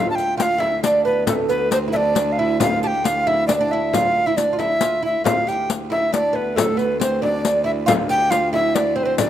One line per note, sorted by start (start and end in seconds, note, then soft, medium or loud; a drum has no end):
0.00 5.25 D2 medium
0.00 0.36 F4 medium
0.10 0.17 A5 medium
0.15 0.37 G5 loud
0.15 riq soft
0.15 frame drum soft
0.37 0.58 F4 medium
0.37 0.43 G5 medium
0.37 riq medium
0.37 frame drum soft
0.42 0.61 F5 loud
0.58 0.82 E4 medium
0.58 0.83 E5 medium
0.58 frame drum medium
0.83 1.06 D4 medium
0.83 1.04 D5 medium
0.83 riq medium
0.83 frame drum soft
1.05 1.27 B3 medium
1.05 1.26 B4 medium
1.05 frame drum soft
1.27 1.48 A3 medium
1.27 1.33 A4 medium
1.27 riq medium
1.27 frame drum medium
1.49 1.72 B3 medium
1.49 1.70 B4 medium
1.49 riq soft
1.49 frame drum soft
1.71 1.87 C4 medium
1.71 1.78 C5 medium
1.71 riq medium
1.71 frame drum soft
1.88 1.93 E4 medium
1.93 2.14 D4 medium
1.93 2.34 D5 loud
1.93 1.97 E5 medium
1.93 frame drum medium
2.15 2.38 D4 medium
2.15 riq medium
2.15 frame drum soft
2.32 2.40 F5 medium
2.38 2.59 E4 medium
2.38 2.61 E5 medium
2.38 frame drum soft
2.60 2.83 F4 medium
2.60 2.82 F5 medium
2.60 riq medium
2.60 frame drum medium
2.83 3.04 G4 medium
2.83 2.88 A5 medium
2.83 riq soft
2.83 frame drum soft
2.87 3.08 G5 loud
3.04 3.26 F4 medium
3.04 3.29 F5 loud
3.04 riq medium
3.04 frame drum soft
3.27 3.47 E4 medium
3.27 3.47 E5 medium
3.27 frame drum medium
3.47 3.59 D4 medium
3.47 3.53 D5 medium
3.47 riq medium
3.47 frame drum soft
3.58 3.72 D4 medium
3.58 3.73 D5 medium
3.71 3.94 E4 medium
3.71 3.96 E5 medium
3.71 frame drum soft
3.93 4.27 F4 medium
3.93 4.28 F5 loud
3.93 riq medium
3.93 frame drum medium
4.26 4.37 E4 medium
4.26 4.38 E5 medium
4.37 4.52 D4 medium
4.37 4.60 D5 medium
4.37 riq medium
4.37 frame drum soft
4.53 4.58 F4 medium
4.59 4.81 E4 medium
4.59 5.03 E5 medium
4.59 riq soft
4.59 frame drum medium
4.81 5.02 F4 medium
4.81 riq medium
4.81 frame drum soft
5.02 5.24 E4 medium
5.02 5.25 E5 medium
5.24 9.30 D2 medium
5.24 5.47 F4 medium
5.24 5.50 F5 medium
5.24 riq medium
5.24 frame drum medium
5.47 5.67 G4 medium
5.47 5.70 G5 medium
5.47 riq soft
5.47 frame drum soft
5.70 riq medium
5.70 frame drum soft
5.90 6.12 E4 medium
5.90 6.12 E5 medium
5.90 frame drum medium
6.12 6.35 D4 medium
6.12 6.37 D5 medium
6.12 riq medium
6.12 frame drum soft
6.33 6.56 B3 medium
6.33 6.58 B4 medium
6.33 frame drum soft
6.56 6.77 A3 medium
6.56 6.79 A4 medium
6.56 riq medium
6.56 frame drum medium
6.77 7.00 B3 medium
6.77 7.00 B4 medium
6.77 riq soft
6.77 frame drum soft
7.00 7.20 C4 medium
7.00 7.21 C5 medium
7.00 riq medium
7.00 frame drum soft
7.22 7.64 D4 medium
7.22 7.63 D5 loud
7.22 frame drum medium
7.45 riq medium
7.64 7.86 E4 medium
7.64 7.71 E5 medium
7.64 frame drum soft
7.86 8.09 F4 medium
7.86 7.92 F5 loud
7.86 riq medium
7.86 frame drum loud
8.09 8.30 G4 medium
8.09 8.32 G5 loud
8.09 riq soft
8.09 frame drum soft
8.30 8.52 F4 medium
8.30 8.53 F5 loud
8.30 riq medium
8.30 frame drum soft
8.53 8.95 E4 medium
8.53 8.76 E5 loud
8.53 frame drum medium
8.75 8.97 D5 medium
8.75 riq medium
8.75 frame drum soft
8.96 9.04 C4 medium
8.96 9.05 C5 medium
8.96 frame drum soft
9.03 9.17 C4 medium
9.03 9.08 B4 medium
9.03 9.18 C5 medium
9.18 9.30 D4 medium
9.18 9.30 D5 medium
9.18 riq medium
9.18 frame drum medium